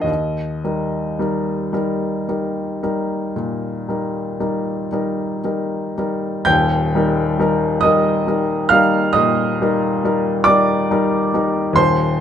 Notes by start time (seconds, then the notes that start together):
Already playing: A#1 F3 D4 A#4
0.01 D#2 D#5
0.64 G3 D#4 A#4
1.19 G3 D#4 A#4
1.73 G3 D#4 A#4
2.29 G3 D#4 A#4
2.83 G3 D#4 A#4
3.36 A#2
3.89 G3 D#4 A#4
4.40 G3 D#4 A#4
4.92 G3 D#4 A#4
5.44 G3 D#4 A#4
5.98 G3 D#4 A#4
6.45 D#1 D#2 G5 G6
6.95 G3 D#4 A#4
7.39 G3 D#4 A#4
7.81 G3 D#4 D#5 D#6
7.85 A#4
8.27 G3 D#4 A#4
8.69 G3 D#4 A#4 F5 F6
9.13 A#2 D#5 D#6
9.62 G3 D#4 A#4
10.04 G3 D#4 A#4
10.44 G3 D#4 A#4 D5 D6
10.91 G3 D#4 A#4
11.34 G3 D#4 A#4
11.73 D#1 D#2 C5 C6